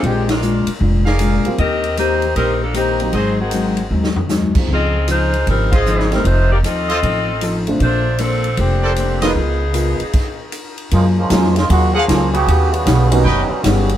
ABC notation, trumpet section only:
X:1
M:4/4
L:1/8
Q:"Swing" 1/4=154
K:Bb
V:1 name="Trumpet section"
z4 z [_ABdf]3 | z4 [GBce] z3 | [_G_Ace] z6 z | z4 z [Fcef]3 |
z3 [FAce] z4 | z4 z [ABcd] z [FB_ce] | z8 | [K:F#] z4 z [GAef] z2 |
z4 [Bcd=g] z3 |]